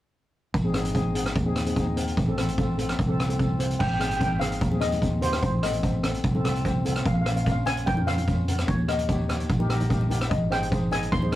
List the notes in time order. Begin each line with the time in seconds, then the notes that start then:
0.54 G#1, kick, closed hi-hat
0.64 C4 D#4 G#4
0.74 C4 D#4 G#4, cross-stick, closed hi-hat
0.85 closed hi-hat
0.94 C4 D#4 G#4, kick, closed hi-hat
1.14 C4 D#4 G#4, closed hi-hat
1.26 cross-stick, closed hi-hat
1.35 D#2, kick, closed hi-hat
1.46 C4 D#4 G#4
1.56 cross-stick, closed hi-hat
1.66 C4 D#4 G#4, closed hi-hat
1.76 C4 D#4 G#4, kick, closed hi-hat
1.96 C4 D#4 A#4, closed hi-hat
2.07 closed hi-hat
2.17 A1, kick, closed hi-hat
2.28 C4 F4 A4
2.37 C4 F4 A4, cross-stick, closed hi-hat
2.48 closed hi-hat
2.58 C4 F4 A4, kick, closed hi-hat
2.78 C4 F4 A4, closed hi-hat
2.89 cross-stick, closed hi-hat
2.99 C2, kick, closed hi-hat
3.08 C4 F4 A4
3.20 cross-stick, closed hi-hat
3.28 C4 F4 A4, closed hi-hat
3.39 C4 F4 A4, kick, closed hi-hat
3.59 C4 F4 C5, closed hi-hat
3.70 closed hi-hat
3.79 G#1 G5, kick, crash
3.87 G5
3.94 G5
3.99 C4 D#4 G#4 G5, cross-stick, closed hi-hat
4.09 G5, closed hi-hat
4.16 C4 D#4 A#4 G5
4.21 G5, kick, closed hi-hat
4.40 C4 D#4 G#4 F5, cross-stick, closed hi-hat, low conga
4.52 closed hi-hat
4.61 D#2, kick, closed hi-hat, high conga
4.71 C4 D#4 G#4, high conga
4.80 C4 D#4 G#4 D#5, cross-stick, closed hi-hat, low conga
4.92 closed hi-hat, high conga
5.01 C4 D#4 F4, kick, closed hi-hat
5.21 C4 D#4 G4 C5, closed hi-hat, low conga
5.33 cross-stick, closed hi-hat
5.43 A1 C5, kick, closed hi-hat
5.62 C4 F4 A4 D#5, cross-stick, closed hi-hat
5.73 closed hi-hat
5.83 C4 F4 C5, kick, closed hi-hat
6.03 C4 F4 A4, cross-stick, closed hi-hat, low conga
6.14 closed hi-hat
6.24 C2, kick, closed hi-hat, high conga
6.35 C4 F4 A4, high conga
6.44 C4 F4 A4, cross-stick, closed hi-hat, low conga
6.55 closed hi-hat
6.65 C4 F4 C5, kick, closed hi-hat
6.85 C4 F4 A4, closed hi-hat, low conga
6.96 cross-stick, closed hi-hat
7.05 A#1 F5, kick, closed hi-hat
7.14 F5
7.22 F5
7.26 C#4 F4 A#4 F5, cross-stick, closed hi-hat
7.36 F5, closed hi-hat
7.44 C#4 F4 A#4 F5, kick, closed hi-hat
7.52 F5
7.66 C#4 F4 A#4 G#5, cross-stick, closed hi-hat, low conga
7.77 closed hi-hat
7.86 F2 G5, kick, closed hi-hat, high conga
7.97 C#4 F4 A#4, high conga
8.07 C#4 F4 A#4 F5, cross-stick, closed hi-hat, low conga
8.18 closed hi-hat, high conga
8.28 C#4 F4 A#4, kick, closed hi-hat
8.48 C#4 F4 A#4, closed hi-hat, low conga
8.58 cross-stick, closed hi-hat
8.67 D#2 C#5, kick, closed hi-hat
8.88 D#4 G4 A#4 D#5, cross-stick, closed hi-hat
8.99 closed hi-hat
9.08 D#4 G4 C#5, kick, closed hi-hat
9.28 D#4 G4 C#5, cross-stick, closed hi-hat, low conga
9.40 closed hi-hat
9.50 A#1, kick, closed hi-hat, high conga
9.59 D#4 G4 A#4, high conga
9.69 D#4 G4 A#4 D#5, cross-stick, closed hi-hat
9.80 closed hi-hat, high conga
9.89 D#4 G4 A#4 F5, kick, closed hi-hat
10.01 high conga
10.10 D#4 G4 A#4, closed hi-hat, low conga
10.21 cross-stick, closed hi-hat
10.30 G#1 D#5, kick, closed hi-hat
10.50 D#4 G#4 C5 G5, cross-stick, closed hi-hat
10.63 closed hi-hat
10.70 D#4 G#4 C5, kick, closed hi-hat
10.91 D#4 G#4 D#5 G#5, cross-stick, closed hi-hat, low conga
11.03 closed hi-hat
11.12 D#2 C6, kick, closed hi-hat, high conga
11.22 D#4 G#4 C5, high conga
11.32 D#4 G#4 C5, cross-stick, closed hi-hat, low conga